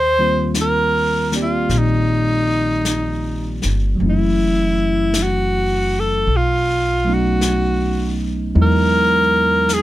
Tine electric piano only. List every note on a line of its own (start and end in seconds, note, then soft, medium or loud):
0.19 4.00 D#3 soft
0.19 3.99 G3 soft
0.19 1.33 A#3 soft
0.19 1.33 C4 soft
0.19 4.00 F4 soft
1.34 3.99 A#3 soft
1.34 3.99 C4 soft
1.34 4.00 G4 soft
1.34 4.00 D5 soft
3.95 6.26 E3 soft
3.95 6.25 F#3 soft
4.01 6.28 A3 soft
4.01 6.29 C#4 soft
4.06 6.30 E4 soft
7.05 8.54 F#3 soft
7.05 8.55 A3 soft
7.05 8.54 B3 soft
7.05 8.56 C#4 soft
7.09 8.54 D#4 soft
8.55 9.82 F#3 soft
8.55 9.82 G#3 soft
8.55 9.82 B3 soft
8.55 9.82 D#4 soft
8.55 9.82 E4 soft